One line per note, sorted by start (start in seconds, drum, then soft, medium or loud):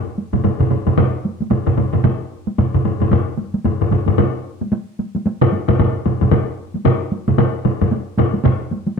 0.18 taiko high soft
0.33 taiko low-mid medium
0.33 taiko mid medium
0.33 taiko high medium
0.44 taiko low-mid medium
0.44 taiko mid medium
0.44 taiko high medium
0.60 taiko low-mid medium
0.60 taiko mid medium
0.70 taiko low-mid medium
0.70 taiko mid medium
0.70 taiko high soft
0.86 taiko low-mid medium
0.86 taiko mid medium
0.86 taiko high soft
0.97 taiko low-mid loud
0.97 taiko mid loud
0.97 taiko high medium
1.25 taiko high soft
1.40 taiko high medium
1.51 taiko low-mid medium
1.51 taiko mid medium
1.51 taiko high medium
1.67 taiko low-mid medium
1.67 taiko mid medium
1.77 taiko low-mid medium
1.77 taiko mid medium
1.77 taiko high medium
1.93 taiko low-mid medium
1.93 taiko mid medium
1.93 taiko high medium
2.04 taiko low-mid medium
2.04 taiko mid loud
2.04 taiko high medium
2.47 taiko high medium
2.58 taiko low-mid medium
2.58 taiko mid medium
2.58 taiko high medium
2.74 taiko low-mid medium
2.74 taiko mid medium
2.85 taiko low-mid medium
2.85 taiko mid medium
2.85 taiko high medium
3.00 taiko low-mid medium
3.00 taiko mid medium
3.00 taiko high medium
3.11 taiko low-mid loud
3.11 taiko mid medium
3.11 taiko high medium
3.38 taiko high medium
3.54 taiko high medium
3.65 taiko low-mid medium
3.65 taiko mid medium
3.65 taiko high medium
3.81 taiko low-mid medium
3.81 taiko mid medium
3.91 taiko low-mid medium
3.91 taiko mid medium
3.91 taiko high medium
4.07 taiko low-mid medium
4.07 taiko mid medium
4.07 taiko high medium
4.18 taiko low-mid medium
4.18 taiko mid loud
4.18 taiko high medium
4.61 taiko high medium
4.72 taiko high medium
4.99 taiko high medium
5.15 taiko high medium
5.26 taiko high medium
5.41 taiko low-mid loud
5.41 taiko mid medium
5.52 taiko high medium
5.68 taiko low-mid loud
5.68 taiko mid loud
5.68 taiko high medium
5.79 taiko low-mid loud
5.79 taiko mid medium
5.79 taiko high medium
6.06 taiko low-mid medium
6.06 taiko mid medium
6.06 taiko high medium
6.21 taiko low-mid medium
6.21 taiko mid medium
6.21 taiko high medium
6.32 taiko low-mid loud
6.32 taiko mid loud
6.32 taiko high medium
6.74 taiko high soft
6.85 taiko low-mid loud
6.85 taiko mid loud
6.85 taiko high medium
7.12 taiko high medium
7.28 taiko low-mid medium
7.28 taiko mid medium
7.28 taiko high medium
7.38 taiko low-mid loud
7.38 taiko mid loud
7.38 taiko high medium
7.65 taiko low-mid medium
7.65 taiko mid medium
7.65 taiko high medium
7.81 taiko low-mid medium
7.81 taiko mid medium
7.81 taiko high medium
7.91 taiko high medium
8.18 taiko low-mid medium
8.18 taiko mid medium
8.18 taiko high medium
8.33 taiko high medium
8.44 taiko low-mid loud
8.44 taiko mid medium
8.44 taiko high medium
8.71 taiko high medium
8.87 taiko high medium